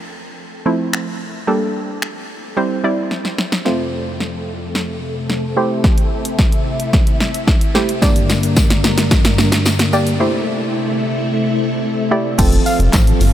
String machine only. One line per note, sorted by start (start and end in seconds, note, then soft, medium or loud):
3.65 5.55 F2 medium
3.65 7.98 C3 medium
3.65 7.98 A3 medium
5.57 8.00 E4 medium
8.02 10.18 G2 medium
8.02 10.18 D3 medium
8.02 10.18 A#3 medium
10.20 12.37 C3 medium
10.20 12.37 A3 medium
10.20 12.36 E4 loud
12.38 13.33 F3 medium
12.38 13.33 C4 medium
12.38 13.33 A4 medium